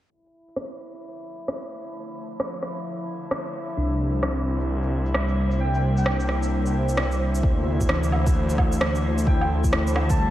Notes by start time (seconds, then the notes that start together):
0.10 D3 E4 E5
0.20 A3
0.25 E4 C5, shaker
0.38 F3
0.48 shaker
0.56 cross-stick
0.71 shaker
0.94 shaker
1.17 shaker
1.40 shaker
1.48 cross-stick
1.86 shaker
2.31 shaker
2.40 cross-stick
2.54 shaker
2.63 cross-stick
2.77 shaker
3.00 shaker
3.22 shaker
3.31 cross-stick
3.45 shaker
3.69 shaker
3.77 C2 C3 D4
3.91 shaker
3.96 A#3
4.03 D4
4.14 shaker
4.23 C4, cross-stick
4.37 shaker
4.60 shaker
4.83 shaker
5.06 shaker
5.14 G3, cross-stick
5.28 shaker
5.51 shaker
5.60 G5
5.74 G5, shaker
5.97 G5, shaker
6.06 cross-stick
6.20 shaker
6.29 cross-stick
6.43 shaker
6.66 shaker
6.89 shaker
6.97 cross-stick
7.12 shaker
7.35 shaker
7.43 D2 D3 E4 E5, kick
7.59 A3
7.81 A4, kick, shaker
7.89 E3, cross-stick
8.04 shaker
8.12 low woodblock
8.27 kick, shaker
8.35 A3
8.50 shaker
8.58 kick, low woodblock
8.72 shaker
8.81 cross-stick
8.95 shaker
9.18 shaker
9.27 G5, kick
9.41 G5, low woodblock
9.64 kick, shaker
9.73 cross-stick
9.87 shaker
9.96 cross-stick, low woodblock
10.10 A5, kick, shaker
10.19 G3